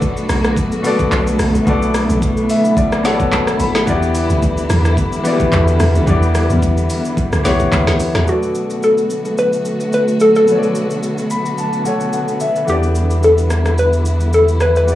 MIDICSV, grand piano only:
0, 0, Header, 1, 2, 480
1, 0, Start_track
1, 0, Key_signature, 2, "minor"
1, 0, Tempo, 550459
1, 1456, Time_signature, 4, 2, 24, 8
1, 13037, End_track
2, 0, Start_track
2, 0, Title_t, "Grand piano"
2, 0, Program_c, 0, 0
2, 0, Control_c, 0, 64, 127
2, 0, Note_on_c, 0, 47, 88
2, 0, Note_on_c, 0, 59, 80
2, 0, Note_on_c, 0, 69, 85
2, 0, Note_on_c, 0, 74, 100
2, 303, Note_off_c, 0, 47, 0
2, 308, Note_off_c, 0, 59, 0
2, 313, Note_off_c, 0, 69, 0
2, 347, Note_off_c, 0, 74, 0
2, 723, Note_on_c, 0, 47, 91
2, 733, Note_on_c, 0, 59, 83
2, 744, Note_on_c, 0, 69, 80
2, 754, Note_on_c, 0, 74, 103
2, 1315, Note_off_c, 0, 47, 0
2, 1320, Note_off_c, 0, 59, 0
2, 1326, Note_off_c, 0, 69, 0
2, 1331, Note_off_c, 0, 74, 0
2, 1443, Note_on_c, 0, 47, 89
2, 1454, Note_on_c, 0, 59, 82
2, 1464, Note_on_c, 0, 69, 84
2, 1475, Note_on_c, 0, 74, 101
2, 2180, Note_on_c, 0, 76, 76
2, 2222, Note_off_c, 0, 47, 0
2, 2228, Note_off_c, 0, 59, 0
2, 2233, Note_off_c, 0, 69, 0
2, 2238, Note_off_c, 0, 74, 0
2, 2401, Note_off_c, 0, 76, 0
2, 2420, Note_on_c, 0, 74, 78
2, 2641, Note_off_c, 0, 74, 0
2, 2644, Note_on_c, 0, 47, 89
2, 2654, Note_on_c, 0, 59, 83
2, 2659, Note_on_c, 0, 78, 77
2, 2665, Note_on_c, 0, 69, 86
2, 2676, Note_on_c, 0, 73, 79
2, 2728, Note_off_c, 0, 73, 0
2, 2732, Note_on_c, 0, 74, 100
2, 2881, Note_off_c, 0, 78, 0
2, 2899, Note_on_c, 0, 81, 77
2, 3121, Note_off_c, 0, 81, 0
2, 3140, Note_on_c, 0, 83, 73
2, 3235, Note_off_c, 0, 47, 0
2, 3241, Note_off_c, 0, 59, 0
2, 3246, Note_off_c, 0, 69, 0
2, 3280, Note_off_c, 0, 74, 0
2, 3361, Note_off_c, 0, 83, 0
2, 3365, Note_on_c, 0, 52, 89
2, 3375, Note_on_c, 0, 59, 78
2, 3385, Note_on_c, 0, 66, 64
2, 3388, Control_c, 0, 64, 0
2, 3396, Note_on_c, 0, 74, 101
2, 3442, Note_on_c, 0, 67, 83
2, 3443, Note_off_c, 0, 66, 0
2, 3548, Control_c, 0, 64, 127
2, 4143, Note_off_c, 0, 52, 0
2, 4148, Note_off_c, 0, 59, 0
2, 4159, Note_off_c, 0, 74, 0
2, 4182, Note_off_c, 0, 67, 0
2, 4564, Note_on_c, 0, 52, 91
2, 4575, Note_on_c, 0, 59, 82
2, 4586, Note_on_c, 0, 66, 65
2, 4596, Note_on_c, 0, 74, 95
2, 4642, Note_on_c, 0, 67, 81
2, 4643, Note_off_c, 0, 66, 0
2, 5156, Note_off_c, 0, 52, 0
2, 5161, Note_off_c, 0, 59, 0
2, 5172, Note_off_c, 0, 74, 0
2, 5195, Note_off_c, 0, 67, 0
2, 5285, Note_on_c, 0, 52, 88
2, 5295, Note_on_c, 0, 59, 80
2, 5306, Note_on_c, 0, 67, 81
2, 5316, Note_on_c, 0, 74, 93
2, 6063, Note_off_c, 0, 52, 0
2, 6068, Note_off_c, 0, 59, 0
2, 6074, Note_off_c, 0, 67, 0
2, 6079, Note_off_c, 0, 74, 0
2, 6484, Note_on_c, 0, 52, 85
2, 6494, Note_on_c, 0, 59, 81
2, 6505, Note_on_c, 0, 67, 79
2, 6515, Note_on_c, 0, 73, 99
2, 7075, Note_off_c, 0, 52, 0
2, 7081, Note_off_c, 0, 59, 0
2, 7086, Note_off_c, 0, 67, 0
2, 7091, Note_off_c, 0, 73, 0
2, 7187, Note_on_c, 0, 47, 63
2, 7208, Note_on_c, 0, 59, 58
2, 7227, Control_c, 0, 64, 0
2, 7229, Note_on_c, 0, 69, 58
2, 7250, Note_on_c, 0, 74, 68
2, 7362, Control_c, 0, 64, 127
2, 9087, Note_off_c, 0, 47, 0
2, 9097, Note_off_c, 0, 59, 0
2, 9107, Note_on_c, 0, 47, 63
2, 9108, Note_off_c, 0, 69, 0
2, 9118, Note_off_c, 0, 74, 0
2, 9128, Note_on_c, 0, 59, 59
2, 9149, Note_on_c, 0, 69, 59
2, 9170, Note_on_c, 0, 73, 58
2, 9215, Note_off_c, 0, 73, 0
2, 9226, Note_on_c, 0, 74, 72
2, 9860, Note_on_c, 0, 83, 73
2, 10081, Note_off_c, 0, 83, 0
2, 10100, Note_on_c, 0, 81, 70
2, 10297, Note_off_c, 0, 47, 0
2, 10308, Note_off_c, 0, 59, 0
2, 10319, Note_off_c, 0, 69, 0
2, 10322, Note_off_c, 0, 81, 0
2, 10324, Note_on_c, 0, 47, 58
2, 10335, Note_on_c, 0, 59, 55
2, 10340, Note_on_c, 0, 78, 66
2, 10345, Note_on_c, 0, 69, 54
2, 10355, Note_on_c, 0, 73, 66
2, 10358, Note_off_c, 0, 74, 0
2, 10561, Note_off_c, 0, 78, 0
2, 10579, Note_on_c, 0, 78, 68
2, 10801, Note_off_c, 0, 78, 0
2, 10818, Note_on_c, 0, 76, 66
2, 11027, Note_on_c, 0, 52, 63
2, 11035, Note_off_c, 0, 59, 0
2, 11040, Note_off_c, 0, 76, 0
2, 11048, Note_on_c, 0, 59, 60
2, 11050, Note_off_c, 0, 47, 0
2, 11060, Note_off_c, 0, 69, 0
2, 11066, Note_off_c, 0, 73, 0
2, 11069, Control_c, 0, 64, 0
2, 11069, Note_on_c, 0, 67, 56
2, 11090, Note_on_c, 0, 74, 74
2, 11229, Control_c, 0, 64, 127
2, 12927, Note_off_c, 0, 52, 0
2, 12937, Note_off_c, 0, 59, 0
2, 12947, Note_on_c, 0, 52, 62
2, 12948, Note_off_c, 0, 67, 0
2, 12958, Note_off_c, 0, 74, 0
2, 12969, Note_on_c, 0, 59, 60
2, 12989, Note_on_c, 0, 67, 58
2, 13011, Note_on_c, 0, 74, 70
2, 13037, Note_off_c, 0, 52, 0
2, 13037, Note_off_c, 0, 59, 0
2, 13037, Note_off_c, 0, 67, 0
2, 13037, Note_off_c, 0, 74, 0
2, 13037, End_track
0, 0, End_of_file